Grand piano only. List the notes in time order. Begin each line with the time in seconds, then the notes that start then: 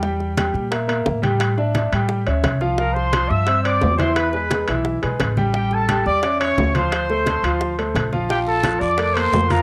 0.03 G3 G4 G5
0.37 G3 G4 G5
0.71 A#3 A#4 E5
0.88 A#3 A#4 E5
1.22 G3 G4 G5
1.58 D4 D5 E5
1.75 D4 D5 E5
1.92 G3 G4 G5
2.27 C#4 C#5 E5
2.61 F3 F4 F5
2.78 F3 F4 F5
3.13 F3 F4 F5
3.48 C4 C5
3.65 C4 C5
3.99 E3 E4 E5
4.34 G#3 G#4 B4
4.51 G#3 G#4 B4
4.69 E3 E4 E5
5.02 G#3 G#4 B4
5.37 G3 G4 G5
5.54 G3 G4 G5
5.89 G3 G4 G5
6.23 C#4 C#5 E5
6.40 C#4 C#5 E5
6.76 F3 F4 F5
7.10 A3 A4 C5
7.27 A3 A4 C5
7.44 F3 F4 F5
7.79 A3 A4 C5
8.13 F3 F4 F5
8.30 F3 F4 F5
8.64 F3 F4 F5
8.98 A3 A4 A#4
9.16 A#3 A4 A#4
9.50 F3 F4 F5